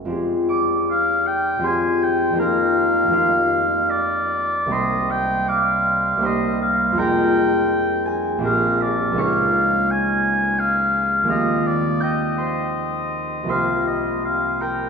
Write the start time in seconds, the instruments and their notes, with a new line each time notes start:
Already playing: harp F#1 F#2 A#3 F#4 C#5 F#5
0.05 harp F2 F3 C4 G4
0.10 harp G#4
0.49 harp D5 D6
0.91 oboe F5
1.27 oboe G5
1.59 harp F2 F3 C4 G4
1.64 harp G#4 C5 C6, oboe G#5
2.03 oboe G5
2.33 harp F2 F3 A#3
2.37 harp D#4 G4 A#4 A#5, oboe F5
3.07 harp F2 F3 A#3
3.12 harp D#4 F4 G4 F5
3.90 oboe D5
4.66 harp C2 G3 A#3 D#4
4.71 harp G4 C5 C6, oboe D#5
5.11 oboe G5
5.47 harp D5 D6, oboe F5
6.17 harp C2 G3 A#3
6.21 harp D#4 G4 C5 C6, oboe D#5
6.62 oboe F5
6.92 harp F2 F3 C4 D#4
6.97 harp G#4 A#4 A#5, oboe G5
8.06 harp G#4 G#5
8.38 harp A#1 F3 C4 D4
8.43 harp G4 A#4 A#5, oboe F5
8.81 oboe D5
9.12 harp C#2 F3 A#3
9.16 harp D#4 G#4 C#5 C#6, oboe F5
9.91 oboe G#5
10.59 oboe F5
11.23 harp D#2 F3 A#3
11.28 harp C4 G4 F5 F6, oboe D#5
11.66 oboe D5
12.00 oboe D#5, harp G5 G6
12.38 harp C5 C6
13.44 harp C2 F3 A#3
13.48 harp C4 G4 C5 C6, oboe F5
13.87 oboe D#5
14.25 oboe F5
14.60 harp A#4 A#5, oboe G5